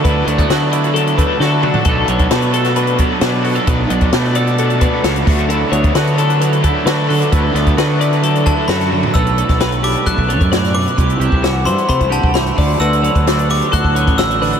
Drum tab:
HH |x-xxx-xxxxx-----|x-xxxxxxxxx-x-ox|x-xxx-xxxxx-xxox|x-xxxxxxxxx-x-ox|
SD |----o-------o---|----o--o----o---|----oo------o---|----o-------o---|
T1 |----------------|----------------|----------------|----------------|
T2 |--------------o-|----------------|----------------|----------------|
FT |---------------o|----------------|----------------|----------------|
BD |o--o------o-----|o--o------o-----|o--o------o---o-|---o------o-----|

HH |x-xxx-xxxxx-xx--|xxxxxxoxx-xxxxox|xxx-x-xxxxx-xxo-|xxxxxxoxx-xxxxox|
SD |--o-o-------oo--|---oo-------oo--|----o-------o---|----o-------o---|
T1 |--------------o-|----------------|----------------|----------------|
T2 |----------------|----------------|----------------|----------------|
FT |---------------o|----------------|----------------|----------------|
BD |o--o------o-----|o--o----oo-o----|o--o----oo-o--o-|---o----oo-o----|